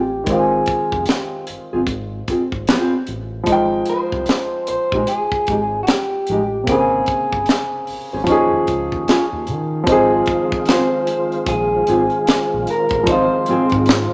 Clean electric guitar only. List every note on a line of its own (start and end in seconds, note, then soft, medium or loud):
0.00 0.30 G4 medium
0.31 1.06 G#4 medium
1.06 1.45 G4 medium
3.90 4.64 C5 medium
4.68 5.08 C5 medium
5.08 5.78 G#4 medium
5.83 5.87 F#4 medium
5.88 6.69 G4 medium
6.69 9.04 G#4 medium
10.69 11.48 C5 medium
11.48 12.70 G#4 medium
12.70 13.09 A#4 medium
13.09 14.14 C5 medium